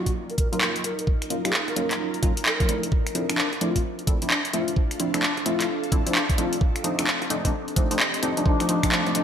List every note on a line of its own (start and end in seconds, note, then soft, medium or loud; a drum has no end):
0.00 0.49 F#3 medium
0.00 0.49 A#3 medium
0.00 0.49 C#4 medium
0.00 0.49 D#4 medium
0.00 2.92 D#4 medium
0.00 0.49 F4 medium
0.00 0.11 F#4 medium
0.00 2.92 A#4 medium
0.06 0.72 D#1 medium
0.06 kick medium
0.06 closed hi-hat medium
0.30 0.35 A#4 medium
0.30 closed hi-hat soft
0.38 0.48 A#4 medium
0.38 kick loud
0.38 closed hi-hat loud
0.53 1.28 F#3 medium
0.53 1.28 A#3 medium
0.53 1.28 C#4 medium
0.53 1.28 D#4 medium
0.53 1.28 F4 loud
0.53 0.58 A#4 medium
0.53 closed hi-hat medium
0.61 0.70 A#4 medium
0.61 clap loud
0.76 closed hi-hat soft
0.84 0.96 D#1 medium
0.84 0.94 A#4 medium
0.84 closed hi-hat loud
0.99 1.04 A#4 medium
0.99 closed hi-hat medium
1.07 1.64 D#1 loud
1.07 kick loud
1.22 finger snap soft
1.22 closed hi-hat soft
1.30 1.41 F#3 medium
1.30 1.41 A#3 medium
1.30 1.41 C#4 medium
1.30 1.41 D#4 medium
1.30 1.41 F4 medium
1.30 closed hi-hat loud
1.45 1.51 F#3 medium
1.45 1.51 A#3 medium
1.45 1.51 C#4 medium
1.45 1.51 D#4 medium
1.45 1.51 F4 medium
1.45 1.62 G#4 loud
1.45 finger snap medium
1.45 closed hi-hat medium
1.53 clap loud
1.68 1.86 D#1 medium
1.68 1.74 A#4 medium
1.68 closed hi-hat soft
1.76 2.21 F#3 medium
1.76 2.21 A#3 medium
1.76 2.21 C#4 medium
1.76 2.21 D#4 medium
1.76 2.21 F4 medium
1.76 1.86 A#4 medium
1.76 closed hi-hat loud
1.91 2.22 D#1 medium
1.91 clap medium
1.91 closed hi-hat medium
2.14 closed hi-hat soft
2.23 2.35 A#1 medium
2.23 2.32 F#3 loud
2.23 2.32 A#3 medium
2.23 2.32 C#4 medium
2.23 2.32 D#4 medium
2.23 2.32 F4 loud
2.23 kick loud
2.23 closed hi-hat loud
2.37 closed hi-hat medium
2.46 2.84 A#4 medium
2.46 clap loud
2.60 2.67 F#3 medium
2.60 2.67 A#3 medium
2.60 2.67 C#4 medium
2.60 2.67 D#4 medium
2.60 2.67 F4 medium
2.60 kick loud
2.60 closed hi-hat soft
2.69 2.81 D#1 medium
2.69 2.92 F3 medium
2.69 2.92 A3 medium
2.69 2.92 C4 medium
2.69 2.92 D4 medium
2.69 2.92 E4 medium
2.69 closed hi-hat loud
2.83 closed hi-hat medium
2.92 3.48 D1 loud
2.92 6.38 D4 medium
2.92 kick loud
3.07 finger snap soft
3.07 closed hi-hat medium
3.15 3.26 F3 medium
3.15 3.26 A3 medium
3.15 3.26 C4 medium
3.15 3.26 D4 medium
3.15 3.26 E4 medium
3.15 closed hi-hat medium
3.29 3.39 F3 medium
3.29 3.39 A3 medium
3.29 3.39 C4 medium
3.29 3.39 D4 medium
3.29 3.47 D4 medium
3.29 3.39 E4 medium
3.29 finger snap medium
3.29 closed hi-hat medium
3.38 clap loud
3.53 3.71 D1 medium
3.53 closed hi-hat soft
3.61 3.83 F3 medium
3.61 3.83 A3 medium
3.61 3.83 C4 medium
3.61 3.83 D4 medium
3.61 3.83 E4 medium
3.61 3.81 F4 medium
3.61 7.10 A4 medium
3.61 closed hi-hat loud
3.76 4.41 D1 medium
3.76 kick medium
3.76 closed hi-hat medium
3.88 7.27 F5 medium
3.99 closed hi-hat soft
4.07 4.18 F3 medium
4.07 4.18 A3 medium
4.07 4.18 C4 medium
4.07 4.18 D4 medium
4.07 4.18 E4 medium
4.07 kick loud
4.07 closed hi-hat loud
4.22 4.31 F3 medium
4.22 4.31 A3 medium
4.22 4.31 C4 medium
4.22 4.31 D4 medium
4.22 4.39 D4 medium
4.22 4.31 E4 medium
4.22 closed hi-hat medium
4.30 clap loud
4.45 closed hi-hat medium
4.53 4.66 D1 medium
4.53 4.75 F3 medium
4.53 4.75 A3 medium
4.53 4.75 C4 medium
4.53 4.75 D4 medium
4.53 4.75 E4 medium
4.53 4.73 F4 medium
4.53 closed hi-hat loud
4.68 closed hi-hat medium
4.76 5.33 D1 loud
4.76 kick loud
4.91 finger snap soft
4.91 closed hi-hat medium
5.00 5.11 F3 medium
5.00 5.11 A3 medium
5.00 5.11 C4 medium
5.00 5.11 D4 medium
5.00 5.11 E4 medium
5.00 closed hi-hat loud
5.14 5.24 F3 medium
5.14 5.24 A3 medium
5.14 5.24 C4 medium
5.14 5.31 D4 medium
5.14 5.24 D4 medium
5.14 5.24 E4 medium
5.14 finger snap medium
5.14 closed hi-hat medium
5.23 clap loud
5.37 5.55 D1 medium
5.37 closed hi-hat soft
5.46 5.68 F3 medium
5.46 5.68 A3 medium
5.46 5.68 C4 medium
5.46 5.68 D4 medium
5.46 5.68 E4 medium
5.46 5.65 F4 medium
5.46 closed hi-hat loud
5.60 6.26 D1 medium
5.60 clap medium
5.60 closed hi-hat medium
5.84 closed hi-hat soft
5.92 6.03 F3 medium
5.92 6.03 A3 medium
5.92 6.03 C4 medium
5.92 6.03 D4 medium
5.92 6.03 E4 medium
5.92 kick loud
5.92 closed hi-hat loud
6.06 6.16 F3 medium
6.06 6.16 A3 medium
6.06 6.16 C4 medium
6.06 6.16 D4 medium
6.06 6.23 D4 medium
6.06 6.16 E4 medium
6.06 closed hi-hat medium
6.15 clap loud
6.29 kick loud
6.29 closed hi-hat medium
6.38 6.50 C2 medium
6.38 6.60 F3 medium
6.38 6.60 A3 medium
6.38 6.60 C4 medium
6.38 9.24 C4 medium
6.38 6.60 D4 medium
6.38 6.60 D#4 medium
6.38 6.57 F4 medium
6.38 closed hi-hat loud
6.53 closed hi-hat medium
6.61 7.18 C2 loud
6.61 kick loud
6.76 9.24 G4 medium
6.76 finger snap soft
6.76 closed hi-hat medium
6.84 6.95 F3 medium
6.84 6.95 A3 medium
6.84 6.95 C4 medium
6.84 6.95 D4 medium
6.84 6.95 D#4 medium
6.84 closed hi-hat loud
6.99 7.06 F3 medium
6.99 7.06 A3 medium
6.99 7.06 C4 medium
6.99 7.06 D4 medium
6.99 7.06 D#4 medium
6.99 finger snap medium
6.99 closed hi-hat medium
7.07 9.24 D#5 medium
7.07 clap loud
7.22 7.40 C2 medium
7.22 closed hi-hat soft
7.30 7.41 F3 medium
7.30 7.41 A3 medium
7.30 7.41 C4 medium
7.30 7.41 D4 medium
7.30 7.41 D#4 medium
7.30 closed hi-hat loud
7.45 8.10 C2 medium
7.45 7.52 F3 medium
7.45 7.52 A3 medium
7.45 7.52 C4 medium
7.45 7.52 D4 medium
7.45 7.52 D#4 medium
7.45 kick medium
7.45 closed hi-hat medium
7.68 closed hi-hat soft
7.76 7.88 F3 medium
7.76 7.88 A3 medium
7.76 7.88 C4 medium
7.76 7.88 D4 medium
7.76 7.88 D#4 medium
7.76 kick loud
7.76 closed hi-hat loud
7.91 7.98 F3 medium
7.91 7.98 A3 medium
7.91 7.98 C4 medium
7.91 7.98 D4 medium
7.91 7.98 D#4 medium
7.91 closed hi-hat medium
8.00 clap loud
8.14 closed hi-hat medium
8.23 8.35 C2 medium
8.23 8.34 F3 medium
8.23 8.34 A3 medium
8.23 8.34 C4 medium
8.23 8.34 D4 medium
8.23 8.34 D#4 medium
8.23 closed hi-hat loud
8.37 8.44 F3 medium
8.37 8.44 A3 medium
8.37 8.44 C4 medium
8.37 8.44 D4 loud
8.37 8.44 D4 medium
8.37 8.44 D#4 medium
8.37 closed hi-hat medium
8.46 9.02 C2 loud
8.46 8.57 F3 medium
8.46 8.57 A3 medium
8.46 8.57 C4 medium
8.46 8.65 D4 loud
8.46 8.57 D4 medium
8.46 8.57 D#4 medium
8.46 kick loud
8.60 8.68 F3 medium
8.60 8.68 A3 medium
8.60 8.68 C4 medium
8.60 8.68 D4 medium
8.60 8.68 D#4 medium
8.60 finger snap soft
8.60 closed hi-hat medium
8.69 8.80 F3 medium
8.69 8.80 A3 medium
8.69 8.80 C4 medium
8.69 8.88 D4 loud
8.69 8.80 D4 medium
8.69 8.80 D#4 medium
8.69 closed hi-hat loud
8.83 8.91 F3 medium
8.83 8.91 A3 medium
8.83 8.91 C4 medium
8.83 8.91 D4 medium
8.83 8.91 D#4 medium
8.83 finger snap medium
8.83 kick medium
8.83 closed hi-hat medium
8.92 9.03 F3 medium
8.92 9.03 A3 medium
8.92 9.03 C4 medium
8.92 9.11 D4 loud
8.92 9.03 D4 medium
8.92 9.03 D#4 medium
8.92 clap loud
9.06 9.24 C2 medium
9.06 9.14 F3 medium
9.06 9.14 A3 medium
9.06 9.14 C4 medium
9.06 9.14 D4 medium
9.06 9.14 D#4 medium
9.06 closed hi-hat soft
9.15 9.24 F3 medium
9.15 9.24 A3 medium
9.15 9.24 C4 medium
9.15 9.24 D4 loud
9.15 9.24 D4 medium
9.15 9.24 D#4 medium
9.15 closed hi-hat loud